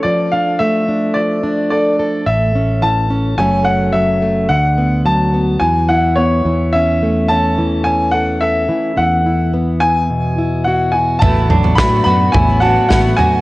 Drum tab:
SD |----------------|----------------|----------------|----------------|
FT |----------------|----------------|----------------|----------------|
BD |----------------|----------------|----------------|----------------|

SD |----------------|----o-------o---|
FT |----------------|o-oo----o-----o-|
BD |----------------|o---o---o---o---|